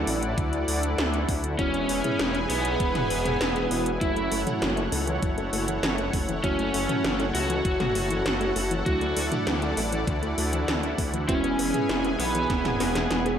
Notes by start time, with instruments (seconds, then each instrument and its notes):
Already playing: fm electric piano F#3 A3 D4 E4 F#4, analog synth pad E4 A4 D5 F#5
0.07 detuned saw bass A1, open hi-hat
0.23 closed hi-hat
0.38 detuned saw bass D2, kick, closed hi-hat
0.53 closed hi-hat
0.68 detuned saw bass D2, open hi-hat
0.83 closed hi-hat
0.98 detuned saw bass D2, snare, closed hi-hat
1.14 closed hi-hat
1.29 detuned saw bass D2, kick, open hi-hat
1.44 closed hi-hat
1.59 detuned saw bass E1, fm electric piano E3 G#3 B3 E4 F#4, lead electric guitar C#4, analog synth pad G#4 B4 G#5, kick, closed hi-hat
1.74 closed hi-hat
1.89 detuned saw bass E1, open hi-hat
2.04 fm electric piano E3 G#3 B3 E4 G#4, closed hi-hat, mid tom
2.19 detuned saw bass E1, snare, closed hi-hat
2.35 closed hi-hat
2.50 detuned saw bass B1, lead electric guitar B3, open hi-hat
2.65 closed hi-hat
2.80 detuned saw bass E1, kick, closed hi-hat
2.95 snare, closed hi-hat, mid tom
3.10 detuned saw bass E1, open hi-hat
3.26 closed hi-hat, mid tom
3.41 detuned saw bass E1, snare, closed hi-hat
3.56 fm electric piano E3 G#3 B3 E4 G#4, closed hi-hat
3.71 detuned saw bass E1, fm electric piano E3 G#3 B3 E4 F#4, open hi-hat
3.86 closed hi-hat
4.01 detuned saw bass F#1, synth arpeggio sound E3, fm electric piano F#3 A3 C#4 E4 F#4, lead electric guitar E4, analog synth pad A4 C#5 F#5, kick, closed hi-hat
4.16 synth arpeggio sound A3, closed hi-hat
4.32 detuned saw bass F#1, synth arpeggio sound A3, open hi-hat
4.47 synth arpeggio sound E3, fm electric piano F#3 A3 C#4 E4 F#4, closed hi-hat, mid tom
4.62 detuned saw bass F#1, synth arpeggio sound E3, snare, closed hi-hat
4.77 synth arpeggio sound A3, closed hi-hat
4.92 detuned saw bass C#2, synth arpeggio sound A3, open hi-hat
5.07 synth arpeggio sound E3, closed hi-hat
5.23 detuned saw bass F#1, synth arpeggio sound E3, kick, closed hi-hat
5.38 synth arpeggio sound A3, closed hi-hat
5.53 detuned saw bass F#1, synth arpeggio sound A3, open hi-hat
5.68 synth arpeggio sound E3, closed hi-hat
5.83 detuned saw bass F#1, synth arpeggio sound E3, snare, closed hi-hat
5.98 synth arpeggio sound A3, closed hi-hat
6.13 detuned saw bass F#1, synth arpeggio sound A3, kick, open hi-hat
6.29 synth arpeggio sound E3, closed hi-hat
6.44 detuned saw bass F#1, synth arpeggio sound E3, fm electric piano F#3 A3 C#4 E4 F#4, lead electric guitar C#4, kick, closed hi-hat
6.59 synth arpeggio sound A3, closed hi-hat
6.74 detuned saw bass F#1, synth arpeggio sound A3, open hi-hat
6.89 synth arpeggio sound E3, fm electric piano F#3 A3 C#4 E4 F#4, closed hi-hat, mid tom
7.04 detuned saw bass F#1, synth arpeggio sound E3, snare, closed hi-hat
7.19 synth arpeggio sound A3, closed hi-hat
7.35 detuned saw bass C#2, synth arpeggio sound A3, lead electric guitar F#4, open hi-hat
7.50 synth arpeggio sound E3, closed hi-hat
7.65 detuned saw bass F#1, synth arpeggio sound E3, kick, closed hi-hat
7.80 synth arpeggio sound A3, snare, closed hi-hat, mid tom
7.95 detuned saw bass F#1, synth arpeggio sound A3, open hi-hat
8.10 synth arpeggio sound E3, closed hi-hat
8.26 detuned saw bass F#1, synth arpeggio sound E3, snare, closed hi-hat
8.41 synth arpeggio sound A3, closed hi-hat
8.56 detuned saw bass F#1, synth arpeggio sound A3, open hi-hat
8.71 synth arpeggio sound E3, closed hi-hat
8.86 detuned saw bass D2, synth arpeggio sound E3, fm electric piano F#3 A3 D4 E4 F#4, analog synth pad E4 D5, lead electric guitar F#4, kick, closed hi-hat
9.01 synth arpeggio sound A3, closed hi-hat
9.17 detuned saw bass D2, synth arpeggio sound A3, open hi-hat
9.32 synth arpeggio sound E3, fm electric piano F#3 A3 D4 E4 F#4, closed hi-hat, mid tom
9.47 detuned saw bass D2, synth arpeggio sound E3, snare, closed hi-hat
9.62 synth arpeggio sound A3, closed hi-hat
9.77 detuned saw bass A1, synth arpeggio sound A3, open hi-hat
9.92 synth arpeggio sound E3, closed hi-hat
10.07 detuned saw bass D2, synth arpeggio sound E3, kick, closed hi-hat
10.23 synth arpeggio sound A3, closed hi-hat
10.38 detuned saw bass D2, synth arpeggio sound A3, open hi-hat
10.53 synth arpeggio sound E3, closed hi-hat
10.68 detuned saw bass D2, synth arpeggio sound E3, snare, closed hi-hat
10.83 synth arpeggio sound A3, closed hi-hat
10.98 detuned saw bass D2, synth arpeggio sound A3, kick, open hi-hat
11.14 synth arpeggio sound E3, closed hi-hat
11.29 detuned saw bass E1, fm electric piano E3 G#3 B3 E4 F#4, synth arpeggio sound E3, lead electric guitar C#4, analog synth pad G#4 B4 G#5, kick, closed hi-hat
11.44 synth arpeggio sound B3, closed hi-hat
11.59 detuned saw bass E1, synth arpeggio sound B3, open hi-hat
11.74 fm electric piano E3 G#3 B3 E4 G#4, synth arpeggio sound E3, closed hi-hat, mid tom
11.89 detuned saw bass E1, synth arpeggio sound E3, snare, closed hi-hat
12.04 synth arpeggio sound B3, closed hi-hat
12.20 detuned saw bass B1, synth arpeggio sound B3, lead electric guitar B3, open hi-hat
12.35 synth arpeggio sound E3, closed hi-hat
12.50 detuned saw bass E1, synth arpeggio sound E3, kick, snare, closed hi-hat
12.65 synth arpeggio sound B3, snare, closed hi-hat, mid tom
12.80 detuned saw bass E1, synth arpeggio sound B3, snare, open hi-hat
12.95 synth arpeggio sound E3, snare, closed hi-hat
13.11 detuned saw bass E1, synth arpeggio sound E3, snare, closed hi-hat
13.26 fm electric piano E3 G#3 B3 E4 G#4, synth arpeggio sound B3, closed hi-hat